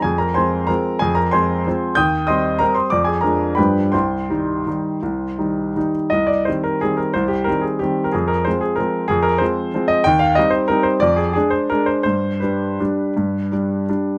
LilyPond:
<<
  \new Staff \with { instrumentName = "Grand piano" } { \time 3/4 \key c \minor \tempo 4 = 180 <aes' aes''>8 <bes' bes''>8 <c'' aes'' c'''>4 <bes' bes''>4 | <aes' aes''>8 <bes' bes''>8 <c'' aes'' c'''>2 | <g'' ees''' g'''>4 <ees'' c''' ees'''>4 <bes' bes''>8 <c'' c'''>8 | <d'' d'''>8 <aes' aes''>8 <bes' bes''>4 <b' g'' b''>4 |
<c'' g'' c'''>2.~ | <c'' g'' c'''>2~ <c'' g'' c'''>8 r8 | ees''8 d''8 c''8 bes'8 aes'8 bes'8 | c''8 g'8 bes'8 aes'8 g'8. bes'16 |
aes'8 bes'8 c''8 aes'8 bes'4 | aes'8 bes'8 c''4. ees''8 | g''8 f''8 ees''8 c''8 bes'8 c''8 | d''8 aes'8 aes'8 c''8 bes'8 c''8 |
c''4 b'2~ | b'2 r4 | }
  \new Staff \with { instrumentName = "Grand piano" } { \clef bass \time 3/4 \key c \minor f,4 <f aes c'>4 <f aes c'>4 | f,4 <f aes c'>4 <f aes c'>4 | ees,4 <g c'>4 <g c'>4 | f,4 <f aes d'>4 <g, f g d'>4 |
c,4 <ees g ees'>4 <ees g ees'>4 | c,4 <ees g ees'>4 <ees g ees'>4 | c,4 <ees g c'>4 <ees g c'>4 | c,4 <ees g c'>4 <ees g c'>4 |
f,4 <f aes c'>4 <f aes c'>4 | f,4 <f aes c'>4 <f aes c'>4 | ees,4 <g c' ees'>4 <g c' ees'>4 | f,4 <aes d'>4 <aes d'>4 |
g,4 <g d'>4 <g d'>4 | g,4 <g d'>4 <g d'>4 | }
>>